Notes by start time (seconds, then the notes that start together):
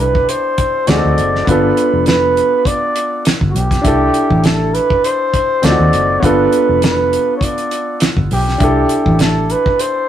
Already playing: D4 E4 G4 A4
0.00 C2 B4
0.15 kick
0.29 C5, closed hi-hat
0.58 kick, closed hi-hat
0.87 D2 C4 D#4 F#4 G#4 D5, snare, closed hi-hat
0.97 A4
1.04 D2
1.18 F#1, closed hi-hat
1.36 snare
1.45 G1 B3 D4, kick, closed hi-hat
1.49 F4 A4 B4
1.77 closed hi-hat
1.93 F1
2.06 B4, snare, closed hi-hat
2.37 closed hi-hat
2.65 D5, kick, closed hi-hat
2.96 closed hi-hat
3.25 snare, closed hi-hat
3.41 G1, kick
3.51 F#4
3.55 B1 G4, closed hi-hat
3.71 kick, snare, closed hi-hat
3.82 C2 D4 E4 G4, kick, closed hi-hat
3.88 A4
4.14 closed hi-hat
4.30 A1, kick
4.44 A4, snare, closed hi-hat
4.75 B4, closed hi-hat
4.90 kick
5.04 C5, closed hi-hat
5.34 kick, closed hi-hat
5.62 D2 C4 D#4 F4 A4 D5, snare, closed hi-hat
5.70 F#4
5.79 D#2
5.93 F#1, closed hi-hat
6.20 G1 B3 D4 F4, kick, closed hi-hat
6.25 A4 B4
6.52 closed hi-hat
6.69 F1
6.82 B4, snare, closed hi-hat
7.13 closed hi-hat
7.37 C#5
7.41 D5, kick, closed hi-hat
7.58 closed hi-hat
7.71 closed hi-hat
8.00 snare, closed hi-hat
8.17 G1, kick
8.31 B1 G4, open hi-hat
8.48 snare
8.58 C2 D4 E4 G4, kick, closed hi-hat
8.64 A4
8.89 closed hi-hat
9.06 A1, kick
9.19 A4, snare, closed hi-hat
9.50 B4, closed hi-hat
9.66 kick
9.79 C5, closed hi-hat